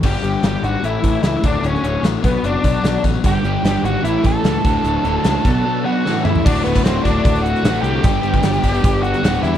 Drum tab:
CC |x---------------|----------------|----------------|----------------|
HH |--x-x-x-x-x-x-x-|x-x-x-x-x-x-x-x-|x-x-x-x-x-x-x-x-|x-x-x-x---------|
SD |----o-------o---|-o--o-------o---|----o-------o---|--o-o-------o---|
T2 |----------------|----------------|----------------|--------------o-|
FT |----------------|----------------|----------------|---------------o|
BD |o---------o---o-|------o---o---o-|o---------o---o-|------o---------|

CC |x---------------|----------------|
HH |--xxx-x-xxxxxxx-|x-x-xxxxx-xxxxx-|
SD |----o------oo---|----o------oo---|
T2 |----------------|----------------|
FT |----------------|----------------|
BD |o--o--o-o-------|o--o--o-o-------|